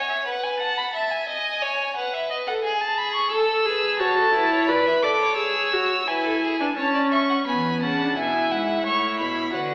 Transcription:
0.00 0.25 C#5 medium
0.09 0.16 E5 medium
0.25 0.61 B4 medium
0.25 0.45 F#5 medium
0.44 0.60 G#5 medium
0.60 0.93 F#5 medium
0.60 0.79 A5 medium
0.78 0.93 B5 medium
0.94 1.27 E5 medium
0.94 1.13 A5 medium
1.12 1.96 G#5 medium
1.27 1.63 D#5 medium
1.62 1.95 C#5 medium
1.96 2.48 B4 medium
1.96 2.15 F#5 medium
2.14 2.30 E5 medium
2.30 2.37 D#5 medium
2.47 2.63 A4 medium
2.47 2.54 F#5 medium
2.63 3.34 G#4 medium
2.63 2.83 G#5 medium
2.81 3.00 A5 medium
2.98 3.15 B5 medium
3.16 3.32 C#6 medium
3.32 3.67 A4 medium
3.32 3.66 A4 medium
3.32 3.99 E6 medium
3.66 4.01 G#4 medium
3.66 4.02 B4 medium
4.00 4.34 F#4 medium
4.00 4.16 C#5 medium
4.00 4.68 A5 medium
4.17 4.35 A4 medium
4.34 4.70 E4 medium
4.34 4.51 B4 medium
4.51 4.70 C#5 medium
4.68 5.05 B4 medium
4.68 4.86 D5 medium
4.68 5.04 B5 medium
4.87 4.93 E5 medium
5.03 5.38 A4 medium
5.03 5.10 D5 medium
5.03 5.37 D6 medium
5.20 6.06 C#5 medium
5.37 5.74 G#4 medium
5.37 6.09 E6 medium
5.73 6.07 F#4 medium
6.07 6.59 E4 medium
6.07 6.26 B4 medium
6.07 6.77 G#5 medium
6.24 6.42 A4 medium
6.42 6.59 G#4 medium
6.59 6.67 D4 medium
6.59 6.67 B4 medium
6.77 7.46 C#4 medium
6.77 6.93 C#5 medium
6.77 7.12 A5 medium
6.94 7.01 D5 medium
7.11 7.19 E5 medium
7.11 7.47 C#6 medium
7.29 7.36 F#5 medium
7.47 7.81 E3 medium
7.47 7.84 B3 medium
7.47 7.80 G#5 medium
7.47 7.80 B5 medium
7.82 8.17 C#3 medium
7.82 7.99 C#4 medium
7.82 8.18 F#5 medium
7.82 8.17 A5 medium
8.00 8.17 D4 medium
8.16 8.51 B2 medium
8.16 9.51 E4 medium
8.16 8.84 E5 medium
8.16 8.53 G#5 medium
8.51 8.85 G#2 medium
8.51 8.86 F#5 medium
8.85 9.21 A2 medium
8.85 9.55 C#5 medium
8.85 9.20 C#6 medium
9.20 9.53 B2 medium
9.20 9.53 B5 medium
9.53 9.74 D3 medium
9.53 9.74 F#4 medium
9.53 9.72 B4 medium
9.53 9.74 F#5 medium
9.70 9.74 A4 medium

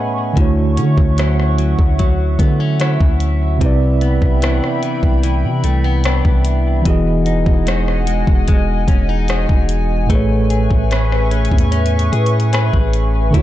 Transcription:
0.00 0.31 A2 medium
0.00 0.32 A3 medium
0.00 0.34 A3 medium
0.00 0.63 A3 medium
0.00 0.33 B3 medium
0.00 0.77 C#4 medium
0.00 0.34 G#4 medium
0.00 0.46 G#4 medium
0.00 0.46 B4 medium
0.00 0.35 C#5 medium
0.00 0.39 D#5 medium
0.00 0.39 E5 medium
0.00 0.38 F#5 medium
0.00 0.34 G#5 medium
0.00 0.34 B5 medium
0.00 3.57 C#6 medium
0.33 0.79 D2 loud
0.33 3.55 D3 medium
0.33 3.61 D3 medium
0.33 3.56 A3 medium
0.33 6.82 E5 medium
0.33 3.58 F#5 medium
0.33 kick loud
0.33 closed hi-hat medium
0.37 3.58 E4 medium
0.37 3.59 F#4 medium
0.41 3.60 C#5 medium
0.77 0.97 D3 loud
0.77 1.18 C#4 medium
0.77 closed hi-hat medium
0.98 1.76 D2 loud
0.98 kick medium
1.18 1.57 F#3 medium
1.18 2.39 C#4 medium
1.18 2.81 E4 medium
1.18 cross-stick loud
1.18 closed hi-hat medium
1.40 cross-stick medium
1.58 1.98 F#3 medium
1.58 closed hi-hat medium
1.79 2.37 D2 loud
1.79 kick medium
1.99 2.79 F#3 medium
1.99 kick medium
1.99 closed hi-hat medium
2.39 2.98 D3 loud
2.39 2.60 B3 medium
2.39 kick medium
2.39 closed hi-hat medium
2.60 2.80 C#4 medium
2.80 3.69 F#3 medium
2.80 3.70 C#4 medium
2.80 4.43 E4 medium
2.80 cross-stick loud
2.80 closed hi-hat medium
3.01 3.59 D2 loud
3.01 kick medium
3.20 closed hi-hat medium
3.58 4.20 C2 loud
3.58 6.80 C3 medium
3.58 6.85 C3 medium
3.58 6.81 C4 medium
3.58 6.82 G5 medium
3.58 6.82 B5 medium
3.58 kick loud
3.58 closed hi-hat medium
3.62 6.82 E4 medium
3.62 6.83 B4 medium
3.66 6.84 D5 medium
4.01 4.42 B3 medium
4.01 closed hi-hat medium
4.22 4.61 C2 loud
4.22 kick medium
4.42 4.83 E3 medium
4.42 5.64 B3 medium
4.42 6.05 D4 medium
4.42 cross-stick loud
4.42 closed hi-hat medium
4.64 cross-stick medium
4.83 5.23 E3 medium
4.83 closed hi-hat medium
5.03 5.45 C2 loud
5.03 kick medium
5.23 6.04 E3 medium
5.23 closed hi-hat medium
5.44 5.63 C3 medium
5.64 6.22 C2 medium
5.64 5.84 A3 medium
5.64 closed hi-hat medium
5.84 6.04 B3 medium
6.04 6.86 E3 medium
6.04 7.26 B3 medium
6.04 6.94 D4 medium
6.04 cross-stick loud
6.04 closed hi-hat medium
6.25 6.83 C2 medium
6.25 kick medium
6.45 closed hi-hat medium
6.82 10.04 E3 medium
6.82 10.05 B3 medium
6.82 kick loud
6.82 closed hi-hat medium
6.86 7.44 E1 loud
6.86 10.36 E3 medium
6.86 10.06 F#4 medium
6.86 10.07 G#4 medium
6.86 10.07 D#5 medium
6.86 10.07 F#5 medium
6.86 13.31 G#5 medium
6.90 10.08 D#5 medium
7.26 7.66 D#4 medium
7.26 closed hi-hat medium
7.46 8.24 E1 loud
7.46 kick medium
7.67 8.07 G#3 medium
7.67 8.88 D#4 medium
7.67 9.29 F#4 medium
7.67 cross-stick loud
7.67 closed hi-hat medium
7.88 cross-stick medium
8.07 8.48 G#3 medium
8.07 closed hi-hat medium
8.27 8.86 E1 loud
8.27 kick medium
8.48 9.29 G#3 medium
8.48 kick medium
8.48 closed hi-hat medium
8.88 9.47 E1 loud
8.88 9.09 C#4 medium
8.88 kick medium
8.88 closed hi-hat medium
9.09 9.29 D#4 medium
9.28 10.10 G#3 medium
9.28 10.19 D#4 medium
9.28 10.19 F#4 medium
9.28 cross-stick loud
9.28 closed hi-hat medium
9.49 10.08 E1 medium
9.49 kick medium
9.69 closed hi-hat medium
10.06 10.68 A1 loud
10.06 13.28 A2 medium
10.06 13.29 A3 medium
10.06 13.42 A3 medium
10.06 kick loud
10.06 closed hi-hat medium
10.10 13.31 G#4 medium
10.10 13.31 B4 medium
10.10 13.32 B4 medium
10.10 13.31 E5 medium
10.10 13.31 C#6 loud
10.15 13.33 C#5 medium
10.50 10.90 G#4 medium
10.50 closed hi-hat medium
10.71 11.49 A1 loud
10.71 kick medium
10.91 11.31 C#4 medium
10.91 12.11 G#4 medium
10.91 12.53 B4 medium
10.91 cross-stick loud
10.91 closed hi-hat medium
11.12 cross-stick medium
11.31 11.71 C#4 medium
11.31 closed hi-hat medium
11.45 closed hi-hat medium
11.52 12.10 E2 loud
11.52 kick medium
11.58 closed hi-hat medium
11.72 12.52 C#4 medium
11.72 closed hi-hat medium
11.86 closed hi-hat medium
11.99 closed hi-hat medium
12.12 12.71 A2 medium
12.12 12.52 G#4 medium
12.12 closed hi-hat medium
12.26 closed hi-hat soft
12.40 closed hi-hat soft
12.53 13.42 C#4 medium
12.53 13.34 G#4 medium
12.53 13.42 B4 medium
12.53 cross-stick loud
12.53 closed hi-hat medium
12.73 13.32 A1 loud
12.73 kick medium
12.93 closed hi-hat medium
13.31 13.42 D2 loud
13.31 13.42 D3 medium
13.31 13.42 A3 medium
13.31 13.42 C#4 medium
13.31 13.42 E5 medium
13.31 13.42 F#5 medium
13.31 13.42 A5 loud
13.31 kick loud
13.31 closed hi-hat medium
13.35 13.42 E4 medium
13.35 13.42 F#4 medium
13.39 13.42 C#5 medium

